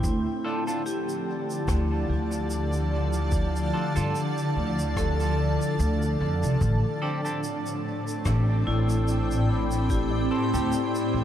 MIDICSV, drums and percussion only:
0, 0, Header, 1, 2, 480
1, 0, Start_track
1, 0, Tempo, 821918
1, 23, Time_signature, 4, 2, 24, 8
1, 6565, End_track
2, 0, Start_track
2, 0, Title_t, "Drums"
2, 21, Note_on_c, 9, 36, 99
2, 23, Note_on_c, 9, 82, 61
2, 80, Note_off_c, 9, 36, 0
2, 81, Note_off_c, 9, 82, 0
2, 397, Note_on_c, 9, 82, 57
2, 456, Note_off_c, 9, 82, 0
2, 506, Note_on_c, 9, 82, 56
2, 564, Note_off_c, 9, 82, 0
2, 637, Note_on_c, 9, 82, 48
2, 696, Note_off_c, 9, 82, 0
2, 879, Note_on_c, 9, 82, 49
2, 937, Note_off_c, 9, 82, 0
2, 980, Note_on_c, 9, 36, 103
2, 983, Note_on_c, 9, 82, 62
2, 984, Note_on_c, 9, 37, 85
2, 1039, Note_off_c, 9, 36, 0
2, 1042, Note_off_c, 9, 82, 0
2, 1043, Note_off_c, 9, 37, 0
2, 1355, Note_on_c, 9, 82, 60
2, 1413, Note_off_c, 9, 82, 0
2, 1462, Note_on_c, 9, 82, 67
2, 1521, Note_off_c, 9, 82, 0
2, 1594, Note_on_c, 9, 82, 45
2, 1652, Note_off_c, 9, 82, 0
2, 1828, Note_on_c, 9, 82, 59
2, 1887, Note_off_c, 9, 82, 0
2, 1937, Note_on_c, 9, 82, 57
2, 1940, Note_on_c, 9, 36, 102
2, 1995, Note_off_c, 9, 82, 0
2, 1998, Note_off_c, 9, 36, 0
2, 2079, Note_on_c, 9, 82, 43
2, 2137, Note_off_c, 9, 82, 0
2, 2315, Note_on_c, 9, 82, 57
2, 2373, Note_off_c, 9, 82, 0
2, 2427, Note_on_c, 9, 82, 59
2, 2485, Note_off_c, 9, 82, 0
2, 2557, Note_on_c, 9, 82, 42
2, 2615, Note_off_c, 9, 82, 0
2, 2798, Note_on_c, 9, 82, 57
2, 2856, Note_off_c, 9, 82, 0
2, 2900, Note_on_c, 9, 36, 102
2, 2901, Note_on_c, 9, 37, 80
2, 2905, Note_on_c, 9, 82, 63
2, 2958, Note_off_c, 9, 36, 0
2, 2960, Note_off_c, 9, 37, 0
2, 2964, Note_off_c, 9, 82, 0
2, 3036, Note_on_c, 9, 82, 40
2, 3095, Note_off_c, 9, 82, 0
2, 3280, Note_on_c, 9, 82, 57
2, 3338, Note_off_c, 9, 82, 0
2, 3385, Note_on_c, 9, 82, 58
2, 3444, Note_off_c, 9, 82, 0
2, 3517, Note_on_c, 9, 82, 43
2, 3576, Note_off_c, 9, 82, 0
2, 3757, Note_on_c, 9, 82, 55
2, 3816, Note_off_c, 9, 82, 0
2, 3861, Note_on_c, 9, 36, 98
2, 3862, Note_on_c, 9, 82, 55
2, 3919, Note_off_c, 9, 36, 0
2, 3921, Note_off_c, 9, 82, 0
2, 4238, Note_on_c, 9, 82, 54
2, 4296, Note_off_c, 9, 82, 0
2, 4343, Note_on_c, 9, 82, 53
2, 4402, Note_off_c, 9, 82, 0
2, 4475, Note_on_c, 9, 82, 44
2, 4533, Note_off_c, 9, 82, 0
2, 4718, Note_on_c, 9, 82, 50
2, 4777, Note_off_c, 9, 82, 0
2, 4821, Note_on_c, 9, 36, 97
2, 4821, Note_on_c, 9, 37, 81
2, 4821, Note_on_c, 9, 82, 66
2, 4879, Note_off_c, 9, 36, 0
2, 4879, Note_off_c, 9, 37, 0
2, 4879, Note_off_c, 9, 82, 0
2, 5194, Note_on_c, 9, 82, 49
2, 5252, Note_off_c, 9, 82, 0
2, 5302, Note_on_c, 9, 82, 55
2, 5361, Note_off_c, 9, 82, 0
2, 5438, Note_on_c, 9, 82, 41
2, 5497, Note_off_c, 9, 82, 0
2, 5672, Note_on_c, 9, 82, 58
2, 5731, Note_off_c, 9, 82, 0
2, 5781, Note_on_c, 9, 36, 95
2, 5782, Note_on_c, 9, 82, 56
2, 5840, Note_off_c, 9, 36, 0
2, 5841, Note_off_c, 9, 82, 0
2, 6157, Note_on_c, 9, 82, 53
2, 6215, Note_off_c, 9, 82, 0
2, 6262, Note_on_c, 9, 82, 63
2, 6320, Note_off_c, 9, 82, 0
2, 6396, Note_on_c, 9, 82, 47
2, 6454, Note_off_c, 9, 82, 0
2, 6565, End_track
0, 0, End_of_file